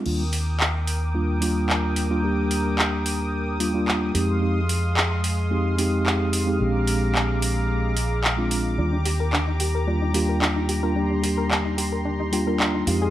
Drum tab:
CC |x-------|--------|--------|--------|
HH |-o-o-o-o|-o-o-o-o|-o-o-o-o|-o-o-o-o|
CP |--x---x-|--x---x-|--x---x-|--x---x-|

CC |--------|--------|
HH |-o-o-o-o|-o-o-o-o|
CP |--x---x-|--x---x-|